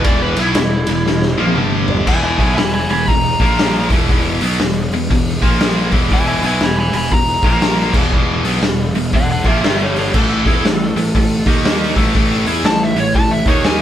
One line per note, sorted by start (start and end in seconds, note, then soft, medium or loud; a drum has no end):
0.04 0.35 E1 medium
0.04 0.37 E2 loud
0.04 0.37 B2 loud
0.04 0.38 E3 loud
0.04 0.22 D5 medium
0.04 kick loud
0.04 ride medium
0.22 0.39 B4 medium
0.36 0.54 B1 loud
0.36 0.57 B2 loud
0.36 0.57 F#3 medium
0.36 0.57 B3 loud
0.36 1.38 E4 medium
0.36 ride medium
0.55 0.85 E1 medium
0.55 0.83 E2 medium
0.55 0.83 B2 medium
0.55 snare loud
0.55 ride medium
0.87 1.05 E1 medium
0.87 1.04 E2 medium
0.87 1.04 B2 medium
0.87 ride medium
1.06 1.36 E1 medium
1.06 1.33 E2 medium
1.06 1.33 B2 medium
1.06 snare medium
1.22 snare medium
1.38 1.56 A#1 loud
1.38 1.56 A#2 loud
1.38 1.57 F3 loud
1.38 1.57 A#3 loud
1.47 high tom medium
1.56 2.04 G1 loud
1.56 2.06 G2 loud
1.56 2.06 D3 loud
1.56 2.07 G3 loud
1.56 mid tom medium
1.88 floor tom loud
1.96 floor tom medium
2.06 2.37 E1 medium
2.06 2.38 E2 loud
2.06 2.38 B2 loud
2.06 2.38 E3 loud
2.06 2.22 E5 medium
2.06 2.23 G#5 medium
2.06 kick loud
2.06 crash loud
2.23 2.38 E5 medium
2.23 2.40 G#5 medium
2.38 2.56 B1 loud
2.38 2.58 B2 medium
2.38 2.58 F#3 medium
2.38 2.58 B3 medium
2.38 2.56 E5 medium
2.38 2.55 G#5 medium
2.38 kick medium
2.38 open hi-hat medium
2.57 2.87 E1 medium
2.57 2.84 E2 medium
2.57 2.84 B2 medium
2.57 2.73 G#5 medium
2.57 2.73 B5 medium
2.57 snare loud
2.57 open hi-hat medium
2.74 2.90 G#5 medium
2.74 2.91 B5 medium
2.89 3.07 E1 medium
2.89 3.05 E2 medium
2.89 3.05 B2 medium
2.89 3.07 G#5 medium
2.89 open hi-hat medium
2.93 3.09 B5 medium
3.07 3.38 E1 medium
3.07 3.35 E2 medium
3.07 3.35 B2 medium
3.07 3.88 A#5 medium
3.07 kick medium
3.07 open hi-hat medium
3.40 3.87 A#1 medium
3.40 3.90 A#2 medium
3.40 3.91 F3 loud
3.40 3.90 A#3 loud
3.40 kick loud
3.40 open hi-hat medium
3.59 snare loud
3.59 open hi-hat medium
3.90 4.08 E1 loud
3.90 4.09 E2 medium
3.90 4.09 B2 medium
3.90 4.10 E3 medium
3.90 kick loud
3.90 open hi-hat medium
4.09 4.39 E1 medium
4.09 4.41 E2 loud
4.09 4.41 B2 loud
4.09 4.41 E3 loud
4.09 kick loud
4.09 open hi-hat medium
4.41 4.59 B1 medium
4.41 4.60 B2 medium
4.41 4.60 F#3 medium
4.41 4.60 B3 loud
4.41 open hi-hat medium
4.59 4.90 E1 medium
4.59 4.86 E2 medium
4.59 4.86 B2 medium
4.59 snare medium
4.59 open hi-hat medium
4.92 5.09 E1 medium
4.92 5.08 E2 medium
4.92 5.08 B2 medium
4.92 open hi-hat medium
5.10 5.40 E1 medium
5.10 5.36 E2 medium
5.10 5.36 B2 medium
5.10 kick loud
5.10 open hi-hat medium
5.42 5.89 A#1 medium
5.42 5.92 A#2 medium
5.42 5.92 F3 loud
5.42 5.92 A#3 loud
5.42 kick loud
5.42 open hi-hat medium
5.60 snare loud
5.60 open hi-hat medium
5.92 6.10 E1 medium
5.92 6.10 E2 medium
5.92 6.11 B2 medium
5.92 6.11 E3 loud
5.92 kick loud
5.92 open hi-hat medium
6.10 6.40 E1 medium
6.10 6.42 E2 loud
6.10 6.41 B2 loud
6.10 6.43 E3 loud
6.10 6.27 E5 medium
6.10 6.28 G#5 loud
6.10 kick loud
6.10 open hi-hat medium
6.28 6.44 E5 medium
6.28 6.45 G#5 medium
6.42 6.61 B1 medium
6.42 6.61 B2 medium
6.42 6.62 F#3 medium
6.42 6.62 B3 loud
6.42 open hi-hat medium
6.47 6.62 E5 medium
6.47 6.63 G#5 medium
6.60 6.91 E1 medium
6.60 6.88 E2 medium
6.60 6.88 B2 medium
6.60 6.78 G#5 medium
6.60 6.79 B5 loud
6.60 snare loud
6.60 open hi-hat medium
6.79 6.94 G#5 medium
6.79 6.96 B5 medium
6.93 7.11 E1 medium
6.93 7.09 E2 medium
6.93 7.09 B2 medium
6.93 7.12 G#5 medium
6.93 open hi-hat medium
6.97 7.13 B5 medium
7.11 7.41 E1 medium
7.11 7.37 E2 medium
7.11 7.37 B2 medium
7.11 7.92 A#5 loud
7.11 kick medium
7.11 open hi-hat medium
7.43 7.90 A#1 medium
7.43 7.94 A#2 medium
7.43 7.94 F3 loud
7.43 7.94 A#3 loud
7.43 kick loud
7.43 open hi-hat medium
7.62 snare loud
7.62 open hi-hat medium
7.94 8.11 E1 medium
7.94 8.12 E2 medium
7.94 8.12 B2 medium
7.94 8.12 E3 medium
7.94 kick loud
7.94 crash medium
8.12 8.42 E1 loud
8.12 8.44 E2 loud
8.12 8.43 B2 loud
8.12 8.44 E3 loud
8.12 kick medium
8.44 8.62 B1 medium
8.44 8.63 B2 medium
8.44 8.63 F#3 loud
8.44 8.63 B3 medium
8.44 snare soft
8.44 open hi-hat medium
8.62 8.92 E1 medium
8.62 8.89 E2 medium
8.62 8.89 B2 medium
8.62 snare loud
8.62 open hi-hat medium
8.94 9.12 E1 medium
8.94 9.10 E2 medium
8.94 9.10 B2 medium
8.94 open hi-hat medium
9.13 9.42 E1 medium
9.13 9.39 E2 medium
9.13 9.39 B2 medium
9.13 9.30 D5 medium
9.13 9.30 F#5 loud
9.13 kick medium
9.13 open hi-hat medium
9.31 9.47 D5 medium
9.31 9.47 F#5 medium
9.44 9.62 A#1 medium
9.44 9.63 A#2 medium
9.44 9.64 F3 medium
9.44 9.64 A#3 loud
9.44 9.64 G#4 medium
9.44 9.63 E5 medium
9.44 kick medium
9.44 open hi-hat medium
9.63 10.10 G1 medium
9.63 10.14 G2 medium
9.63 10.14 D3 loud
9.63 10.14 G3 loud
9.63 9.80 G4 medium
9.63 9.81 E5 medium
9.63 snare loud
9.63 open hi-hat medium
9.82 9.97 A4 medium
9.82 9.98 C#5 medium
9.96 10.13 A4 medium
9.96 10.14 C#5 medium
9.96 open hi-hat medium
10.14 10.43 A1 medium
10.14 10.45 A2 loud
10.14 10.45 E3 loud
10.14 10.45 A3 loud
10.14 11.61 A4 loud
10.14 kick loud
10.14 crash medium
10.45 10.63 E2 medium
10.45 10.64 E3 medium
10.45 10.64 B3 medium
10.45 10.65 E4 loud
10.45 kick loud
10.45 snare soft
10.45 open hi-hat medium
10.64 10.94 A1 medium
10.64 10.90 A2 medium
10.64 10.90 E3 medium
10.64 snare loud
10.64 open hi-hat medium
10.96 11.13 A1 medium
10.96 11.11 A2 medium
10.96 11.11 E3 medium
10.96 open hi-hat medium
11.15 11.44 A1 medium
11.15 11.40 A2 medium
11.15 11.40 E3 medium
11.15 kick loud
11.15 open hi-hat medium
11.45 11.92 D#2 medium
11.45 11.96 D#3 medium
11.45 11.96 A#3 loud
11.45 11.96 D#4 loud
11.45 kick loud
11.45 open hi-hat medium
11.65 snare loud
11.65 open hi-hat medium
11.96 12.14 A1 loud
11.96 12.14 A2 medium
11.96 12.14 E3 medium
11.96 12.15 A3 medium
11.96 kick loud
11.96 open hi-hat medium
12.15 12.44 A1 medium
12.15 12.46 A2 loud
12.15 12.46 E3 loud
12.15 12.46 A3 loud
12.15 kick loud
12.15 open hi-hat medium
12.46 12.63 E2 medium
12.46 12.65 E3 medium
12.46 12.65 B3 medium
12.46 12.65 E4 loud
12.46 open hi-hat medium
12.64 12.94 A1 medium
12.64 12.91 A2 medium
12.64 12.91 E3 medium
12.64 12.82 A5 loud
12.64 snare loud
12.64 open hi-hat medium
12.83 12.99 E5 medium
12.95 13.13 A1 medium
12.95 13.12 A2 medium
12.95 13.12 E3 medium
12.95 open hi-hat medium
13.00 13.15 C#5 medium
13.14 13.44 A1 medium
13.14 13.41 A2 medium
13.14 13.41 E3 medium
13.14 13.31 A5 loud
13.14 kick loud
13.14 open hi-hat medium
13.31 13.48 E5 medium
13.46 13.82 D#2 loud
13.46 13.82 D#3 loud
13.46 13.82 A#3 loud
13.46 13.82 D#4 loud
13.46 13.64 C#5 medium
13.46 kick loud
13.46 open hi-hat medium
13.64 13.81 G#5 medium
13.64 snare loud
13.64 open hi-hat medium